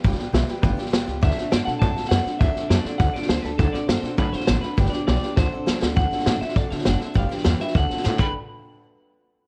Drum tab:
CC |----------------|----------------|----------------|----------------|
HH |----p-------p---|----p-------p---|----p-------p---|----p-------p---|
SD |ooo-o-o-o-ooo-o-|ooo-o-o-o-ooo-o-|o-o-o-o-o-ooo-o-|o-o-o-o-o-ooo-o-|
BD |o-------o-------|o-------o-------|o-------o-------|o-------o-------|

CC |----------------|----------------|--------------x-|----------------|
HH |----p-------p---|----p-------p---|----p-------p---|----------------|
SD |ooo-o-o-o---o-o-|o-ooo-ooo-ooo-o-|o-ooo-ooo-ooo---|----------------|
BD |o-------o-------|o-------o-------|o-------o-----o-|----------------|